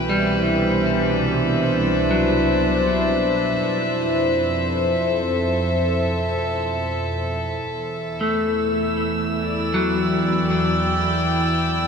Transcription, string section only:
0.00 3.62 E3 medium
0.00 5.21 B4 medium
0.00 9.09 E5 medium
0.00 1.18 G5 medium
0.24 7.69 C5 medium
0.42 5.21 D4 medium
4.63 9.17 A4 medium
7.73 11.88 E3 soft
8.09 11.88 E4 medium
9.44 11.88 D5 medium
9.97 11.88 G5 medium

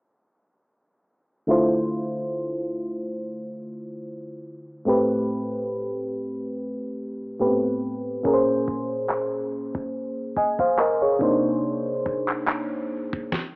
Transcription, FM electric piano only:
1.47 4.82 D3 medium
1.47 4.82 A3 medium
1.47 4.83 E4 medium
1.47 4.83 F4 medium
1.47 4.84 C5 medium
4.85 7.36 A2 medium
4.85 7.36 A3 medium
4.85 7.36 C4 medium
4.85 7.37 G4 medium
4.85 7.38 B4 medium
7.40 8.24 A2 medium
7.40 8.25 A3 soft
7.40 7.48 B3 soft
7.40 8.25 G4 soft
7.40 8.25 B4 medium
7.47 8.28 C4 soft
8.23 11.16 A#2 medium
8.23 11.16 A#3 medium
8.23 11.17 C#4 medium
8.23 10.33 G#4 medium
8.23 8.33 A#4 medium
8.34 10.37 C5 medium
10.37 10.59 D#5 medium
10.37 10.58 G#5 medium
10.60 10.78 C5 medium
10.60 10.78 F5 medium
10.79 11.01 A#4 medium
10.79 11.01 D#5 medium
11.02 11.42 G#4 soft
11.02 11.42 C#5 medium
11.19 13.27 C3 medium
11.19 13.28 A#3 medium
11.19 13.28 D4 medium
11.19 13.29 D#4 medium
11.19 13.29 C5 medium

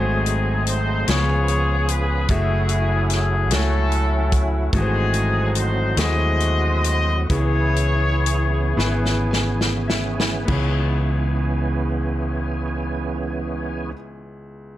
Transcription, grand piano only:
0.00 1.04 G#2 medium
0.00 0.76 A3 medium
0.00 0.77 F#4 medium
0.00 0.77 G#4 medium
0.00 0.80 C5 medium
1.07 2.26 C#3 medium
1.07 1.98 B3 medium
1.07 1.98 F4 medium
1.07 1.99 G#4 medium
1.07 1.99 C#5 medium
2.29 3.20 A3 medium
2.29 3.20 F#4 medium
2.29 3.20 G#4 medium
2.29 3.21 E5 medium
3.51 4.41 A3 medium
3.51 4.42 F#4 medium
3.51 4.42 C#5 medium
3.51 4.42 G#5 medium
4.73 5.94 G#2 medium
4.73 5.65 E3 medium
4.73 5.65 A3 medium
4.73 5.66 F#4 medium
4.73 4.80 A4 medium
4.81 5.69 C5 medium
5.97 6.94 A3 medium
5.97 6.94 E4 medium
5.97 6.95 F#4 medium
5.97 6.95 G#4 medium
7.30 8.73 C#3 soft
7.30 8.37 B3 medium
7.30 8.37 E4 medium
7.30 8.38 G#4 medium
7.30 8.38 C#5 medium
8.77 10.01 B3 medium
8.77 10.01 E4 medium
8.77 10.02 G#4 medium
8.77 10.02 B4 medium
9.31 9.84 G#5 soft
9.88 10.44 E5 soft
10.45 13.93 C#2 medium
10.45 13.89 B3 medium
10.45 13.91 E4 medium
10.50 13.94 G#4 medium
10.50 13.96 C#5 medium

